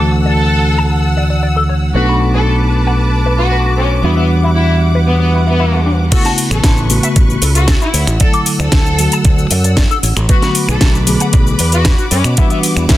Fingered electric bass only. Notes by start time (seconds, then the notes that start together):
Already playing: D2
1.94 B1
4.03 E2
6.51 A1
6.64 A1
7.16 A1
7.42 C#2
7.94 D2
8.07 A1
8.59 D2
8.72 D2
9.25 D2
9.51 F#2
10.03 A1
10.16 A1
10.68 B1
10.81 B1
11.33 B1
11.59 E2
12.11 F#2
12.24 B2
12.76 E2
12.90 E2